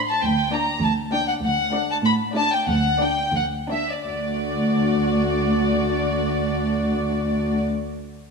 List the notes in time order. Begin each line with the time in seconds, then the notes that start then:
Already playing: A2 A3 D4 C5
0.10 A5
0.23 D2 G5
0.52 A#3 D4 D5 A#5
0.83 D2 A5
1.12 A#3 D4 D5 G5
1.27 F#5
1.42 D2 F#5
1.72 A3 D4 D5
1.90 A5
2.04 A2 B5
2.35 A3 D4 D5 A5
2.53 G5
2.68 D2 F#5
3.00 A#3 D4 D5 G5
3.34 D2 F#5
3.70 A#3 D4 D5 E5
3.91 D5
4.06 D2 A3 D4 F#4 D5